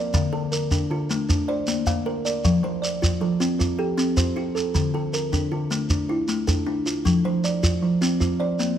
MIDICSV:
0, 0, Header, 1, 4, 480
1, 0, Start_track
1, 0, Key_signature, -1, "major"
1, 0, Tempo, 384246
1, 175, Time_signature, 12, 3, 24, 8
1, 10973, End_track
2, 0, Start_track
2, 0, Title_t, "Kalimba"
2, 0, Program_c, 0, 108
2, 0, Note_on_c, 0, 70, 72
2, 0, Note_on_c, 0, 77, 70
2, 172, Note_off_c, 0, 70, 0
2, 173, Note_off_c, 0, 77, 0
2, 174, Note_on_c, 0, 50, 88
2, 407, Note_on_c, 0, 69, 68
2, 654, Note_off_c, 0, 50, 0
2, 893, Note_on_c, 0, 62, 78
2, 1131, Note_off_c, 0, 69, 0
2, 1138, Note_on_c, 0, 65, 66
2, 1374, Note_off_c, 0, 62, 0
2, 1380, Note_on_c, 0, 57, 79
2, 1618, Note_off_c, 0, 57, 0
2, 1856, Note_off_c, 0, 65, 0
2, 1857, Note_on_c, 0, 72, 65
2, 2096, Note_on_c, 0, 58, 75
2, 2334, Note_on_c, 0, 77, 72
2, 2575, Note_off_c, 0, 58, 0
2, 2575, Note_on_c, 0, 70, 72
2, 2576, Note_off_c, 0, 72, 0
2, 3054, Note_off_c, 0, 77, 0
2, 3055, Note_off_c, 0, 70, 0
2, 3056, Note_on_c, 0, 53, 84
2, 3298, Note_on_c, 0, 72, 65
2, 3535, Note_off_c, 0, 53, 0
2, 3776, Note_on_c, 0, 65, 75
2, 4014, Note_on_c, 0, 69, 67
2, 4016, Note_off_c, 0, 72, 0
2, 4251, Note_on_c, 0, 60, 77
2, 4255, Note_off_c, 0, 65, 0
2, 4729, Note_on_c, 0, 67, 65
2, 4733, Note_off_c, 0, 60, 0
2, 4734, Note_off_c, 0, 69, 0
2, 4966, Note_on_c, 0, 60, 77
2, 5209, Note_on_c, 0, 72, 70
2, 5450, Note_off_c, 0, 60, 0
2, 5452, Note_off_c, 0, 67, 0
2, 5453, Note_on_c, 0, 65, 68
2, 5929, Note_on_c, 0, 50, 82
2, 5932, Note_off_c, 0, 72, 0
2, 5934, Note_off_c, 0, 65, 0
2, 6178, Note_on_c, 0, 69, 65
2, 6412, Note_off_c, 0, 50, 0
2, 6657, Note_on_c, 0, 62, 77
2, 6891, Note_on_c, 0, 65, 60
2, 6896, Note_off_c, 0, 69, 0
2, 7130, Note_on_c, 0, 57, 75
2, 7136, Note_off_c, 0, 62, 0
2, 7612, Note_off_c, 0, 57, 0
2, 7613, Note_off_c, 0, 65, 0
2, 7614, Note_on_c, 0, 64, 64
2, 7850, Note_on_c, 0, 57, 76
2, 8089, Note_on_c, 0, 69, 72
2, 8327, Note_on_c, 0, 62, 71
2, 8333, Note_off_c, 0, 57, 0
2, 8334, Note_off_c, 0, 64, 0
2, 8810, Note_on_c, 0, 53, 77
2, 8811, Note_off_c, 0, 62, 0
2, 8812, Note_off_c, 0, 69, 0
2, 9058, Note_on_c, 0, 72, 65
2, 9293, Note_off_c, 0, 53, 0
2, 9535, Note_on_c, 0, 65, 77
2, 9777, Note_off_c, 0, 72, 0
2, 10015, Note_off_c, 0, 65, 0
2, 10016, Note_on_c, 0, 60, 74
2, 10256, Note_off_c, 0, 60, 0
2, 10496, Note_on_c, 0, 72, 64
2, 10736, Note_on_c, 0, 58, 75
2, 10973, Note_off_c, 0, 58, 0
2, 10973, Note_off_c, 0, 72, 0
2, 10973, End_track
3, 0, Start_track
3, 0, Title_t, "Kalimba"
3, 0, Program_c, 1, 108
3, 0, Note_on_c, 1, 70, 67
3, 0, Note_on_c, 1, 74, 71
3, 408, Note_on_c, 1, 50, 83
3, 410, Note_off_c, 1, 74, 0
3, 411, Note_off_c, 1, 70, 0
3, 646, Note_on_c, 1, 70, 63
3, 891, Note_off_c, 1, 50, 0
3, 1132, Note_on_c, 1, 50, 84
3, 1369, Note_on_c, 1, 62, 67
3, 1370, Note_off_c, 1, 70, 0
3, 1598, Note_off_c, 1, 62, 0
3, 1613, Note_off_c, 1, 50, 0
3, 1613, Note_on_c, 1, 62, 78
3, 1851, Note_on_c, 1, 74, 68
3, 1854, Note_off_c, 1, 62, 0
3, 2333, Note_on_c, 1, 58, 75
3, 2573, Note_off_c, 1, 74, 0
3, 2573, Note_on_c, 1, 70, 69
3, 2812, Note_on_c, 1, 74, 68
3, 2814, Note_off_c, 1, 58, 0
3, 3288, Note_on_c, 1, 53, 78
3, 3293, Note_off_c, 1, 74, 0
3, 3294, Note_off_c, 1, 70, 0
3, 3523, Note_on_c, 1, 74, 64
3, 3771, Note_off_c, 1, 53, 0
3, 4007, Note_on_c, 1, 53, 76
3, 4248, Note_on_c, 1, 65, 64
3, 4249, Note_off_c, 1, 74, 0
3, 4472, Note_off_c, 1, 65, 0
3, 4487, Note_on_c, 1, 65, 77
3, 4490, Note_off_c, 1, 53, 0
3, 4729, Note_on_c, 1, 69, 66
3, 4971, Note_off_c, 1, 65, 0
3, 5209, Note_on_c, 1, 65, 77
3, 5431, Note_off_c, 1, 65, 0
3, 5446, Note_on_c, 1, 65, 68
3, 5452, Note_off_c, 1, 69, 0
3, 5683, Note_on_c, 1, 69, 72
3, 6169, Note_off_c, 1, 69, 0
3, 6169, Note_on_c, 1, 50, 77
3, 6170, Note_off_c, 1, 65, 0
3, 6415, Note_on_c, 1, 70, 66
3, 6652, Note_off_c, 1, 50, 0
3, 6892, Note_on_c, 1, 50, 78
3, 7135, Note_off_c, 1, 70, 0
3, 7136, Note_on_c, 1, 62, 65
3, 7357, Note_off_c, 1, 62, 0
3, 7372, Note_on_c, 1, 62, 75
3, 7373, Note_off_c, 1, 50, 0
3, 7610, Note_on_c, 1, 65, 67
3, 7853, Note_off_c, 1, 62, 0
3, 8087, Note_on_c, 1, 62, 73
3, 8312, Note_off_c, 1, 62, 0
3, 8327, Note_on_c, 1, 62, 68
3, 8332, Note_off_c, 1, 65, 0
3, 8571, Note_on_c, 1, 65, 73
3, 9051, Note_off_c, 1, 62, 0
3, 9053, Note_off_c, 1, 65, 0
3, 9057, Note_on_c, 1, 53, 81
3, 9297, Note_on_c, 1, 74, 64
3, 9536, Note_off_c, 1, 53, 0
3, 9775, Note_on_c, 1, 53, 78
3, 10010, Note_on_c, 1, 65, 69
3, 10016, Note_off_c, 1, 74, 0
3, 10234, Note_off_c, 1, 65, 0
3, 10249, Note_on_c, 1, 65, 80
3, 10255, Note_off_c, 1, 53, 0
3, 10489, Note_on_c, 1, 74, 70
3, 10492, Note_off_c, 1, 65, 0
3, 10973, Note_off_c, 1, 74, 0
3, 10973, End_track
4, 0, Start_track
4, 0, Title_t, "Shekere"
4, 173, Note_on_c, 9, 82, 70
4, 298, Note_off_c, 9, 82, 0
4, 655, Note_on_c, 9, 82, 55
4, 780, Note_off_c, 9, 82, 0
4, 890, Note_on_c, 9, 82, 72
4, 1014, Note_off_c, 9, 82, 0
4, 1378, Note_on_c, 9, 82, 51
4, 1503, Note_off_c, 9, 82, 0
4, 1620, Note_on_c, 9, 82, 74
4, 1745, Note_off_c, 9, 82, 0
4, 2091, Note_on_c, 9, 82, 52
4, 2216, Note_off_c, 9, 82, 0
4, 2332, Note_on_c, 9, 82, 65
4, 2456, Note_off_c, 9, 82, 0
4, 2821, Note_on_c, 9, 82, 55
4, 2946, Note_off_c, 9, 82, 0
4, 3056, Note_on_c, 9, 82, 69
4, 3181, Note_off_c, 9, 82, 0
4, 3547, Note_on_c, 9, 82, 57
4, 3672, Note_off_c, 9, 82, 0
4, 3792, Note_on_c, 9, 82, 69
4, 3917, Note_off_c, 9, 82, 0
4, 4260, Note_on_c, 9, 82, 53
4, 4385, Note_off_c, 9, 82, 0
4, 4505, Note_on_c, 9, 82, 73
4, 4630, Note_off_c, 9, 82, 0
4, 4980, Note_on_c, 9, 82, 57
4, 5105, Note_off_c, 9, 82, 0
4, 5211, Note_on_c, 9, 82, 70
4, 5336, Note_off_c, 9, 82, 0
4, 5706, Note_on_c, 9, 82, 53
4, 5831, Note_off_c, 9, 82, 0
4, 5934, Note_on_c, 9, 82, 69
4, 6059, Note_off_c, 9, 82, 0
4, 6418, Note_on_c, 9, 82, 57
4, 6543, Note_off_c, 9, 82, 0
4, 6660, Note_on_c, 9, 82, 70
4, 6785, Note_off_c, 9, 82, 0
4, 7138, Note_on_c, 9, 82, 55
4, 7263, Note_off_c, 9, 82, 0
4, 7370, Note_on_c, 9, 82, 75
4, 7494, Note_off_c, 9, 82, 0
4, 7850, Note_on_c, 9, 82, 54
4, 7975, Note_off_c, 9, 82, 0
4, 8095, Note_on_c, 9, 82, 73
4, 8220, Note_off_c, 9, 82, 0
4, 8576, Note_on_c, 9, 82, 54
4, 8701, Note_off_c, 9, 82, 0
4, 8817, Note_on_c, 9, 82, 67
4, 8942, Note_off_c, 9, 82, 0
4, 9300, Note_on_c, 9, 82, 58
4, 9425, Note_off_c, 9, 82, 0
4, 9540, Note_on_c, 9, 82, 73
4, 9664, Note_off_c, 9, 82, 0
4, 10024, Note_on_c, 9, 82, 55
4, 10149, Note_off_c, 9, 82, 0
4, 10256, Note_on_c, 9, 82, 74
4, 10380, Note_off_c, 9, 82, 0
4, 10738, Note_on_c, 9, 82, 57
4, 10863, Note_off_c, 9, 82, 0
4, 10973, End_track
0, 0, End_of_file